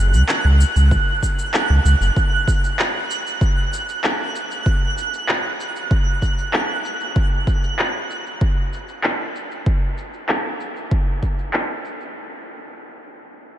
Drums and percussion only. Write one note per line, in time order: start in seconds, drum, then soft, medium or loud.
0.14 shaker soft
0.29 clap loud
0.29 shaker soft
0.61 shaker medium
0.76 shaker soft
0.91 kick loud
0.91 shaker soft
1.23 kick medium
1.23 shaker medium
1.39 shaker soft
1.54 clap medium
1.54 shaker soft
1.86 shaker medium
2.02 shaker soft
2.16 kick loud
2.16 shaker soft
2.48 kick loud
2.48 shaker medium
2.64 shaker soft
2.79 clap medium
2.79 shaker soft
3.11 shaker medium
3.27 shaker soft
3.41 kick loud
3.41 shaker soft
3.73 shaker medium
3.89 shaker soft
4.04 clap medium
4.04 shaker soft
4.36 shaker medium
4.51 shaker soft
4.66 kick loud
4.66 shaker soft
4.98 shaker medium
5.14 shaker soft
5.29 clap medium
5.29 shaker soft
5.60 shaker medium
5.76 shaker soft
5.91 kick loud
5.91 shaker soft
6.22 kick medium
6.22 shaker medium
6.38 shaker soft
6.53 clap medium
6.53 shaker soft
6.85 shaker medium
7.01 shaker soft
7.16 kick loud
7.16 shaker soft
7.47 kick medium
7.47 shaker medium
7.64 shaker soft
7.79 clap medium
7.79 shaker soft
8.10 shaker medium
8.26 shaker soft
8.41 kick loud
8.41 shaker soft
8.73 shaker medium
8.89 shaker soft
9.04 clap medium
9.04 shaker soft
9.36 shaker medium
9.51 shaker soft
9.66 kick loud
9.66 shaker soft
9.98 shaker medium
10.14 shaker soft
10.29 clap medium
10.29 shaker soft
10.60 shaker medium
10.76 shaker soft
10.91 kick loud
11.23 kick soft
11.23 shaker medium
11.39 shaker soft
11.53 clap medium
11.53 shaker soft
11.85 shaker medium
12.01 shaker soft